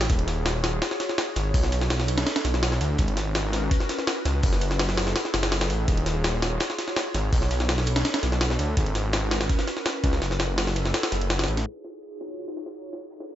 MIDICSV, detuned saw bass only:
0, 0, Header, 1, 2, 480
1, 0, Start_track
1, 0, Key_signature, -6, "minor"
1, 0, Tempo, 361446
1, 130, Time_signature, 4, 2, 24, 8
1, 17730, End_track
2, 0, Start_track
2, 0, Title_t, "Detuned saw bass"
2, 0, Program_c, 0, 39
2, 129, Note_on_c, 0, 27, 99
2, 1071, Note_off_c, 0, 27, 0
2, 1809, Note_on_c, 0, 32, 90
2, 2026, Note_off_c, 0, 32, 0
2, 2048, Note_on_c, 0, 35, 99
2, 2990, Note_off_c, 0, 35, 0
2, 3249, Note_on_c, 0, 35, 89
2, 3711, Note_off_c, 0, 35, 0
2, 3730, Note_on_c, 0, 38, 94
2, 3946, Note_off_c, 0, 38, 0
2, 3969, Note_on_c, 0, 32, 102
2, 4911, Note_off_c, 0, 32, 0
2, 5648, Note_on_c, 0, 37, 92
2, 5866, Note_off_c, 0, 37, 0
2, 5890, Note_on_c, 0, 30, 99
2, 6831, Note_off_c, 0, 30, 0
2, 7091, Note_on_c, 0, 30, 88
2, 7323, Note_off_c, 0, 30, 0
2, 7331, Note_on_c, 0, 30, 89
2, 7574, Note_on_c, 0, 33, 96
2, 7594, Note_off_c, 0, 30, 0
2, 7789, Note_off_c, 0, 33, 0
2, 7810, Note_on_c, 0, 27, 97
2, 8751, Note_off_c, 0, 27, 0
2, 9489, Note_on_c, 0, 32, 93
2, 9706, Note_off_c, 0, 32, 0
2, 9729, Note_on_c, 0, 35, 100
2, 10671, Note_off_c, 0, 35, 0
2, 10930, Note_on_c, 0, 35, 89
2, 11391, Note_off_c, 0, 35, 0
2, 11410, Note_on_c, 0, 38, 94
2, 11627, Note_off_c, 0, 38, 0
2, 11649, Note_on_c, 0, 32, 102
2, 12591, Note_off_c, 0, 32, 0
2, 13329, Note_on_c, 0, 37, 92
2, 13546, Note_off_c, 0, 37, 0
2, 13569, Note_on_c, 0, 30, 100
2, 14511, Note_off_c, 0, 30, 0
2, 14769, Note_on_c, 0, 30, 89
2, 15231, Note_off_c, 0, 30, 0
2, 15251, Note_on_c, 0, 33, 91
2, 15467, Note_off_c, 0, 33, 0
2, 17730, End_track
0, 0, End_of_file